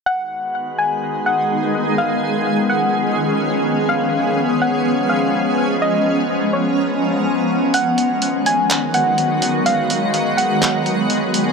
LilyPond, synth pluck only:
\new Staff \with { instrumentName = "Synth pluck" } { \time 4/4 \key gis \dorian \tempo 4 = 125 fis''4. gis''4 fis''4. | eis''4. fis''2~ fis''8 | eis''4. fis''4 eis''4. | dis''4. cis''2~ cis''8 |
fis''4. gis''4 fis''4. | eis''4. fis''2~ fis''8 | }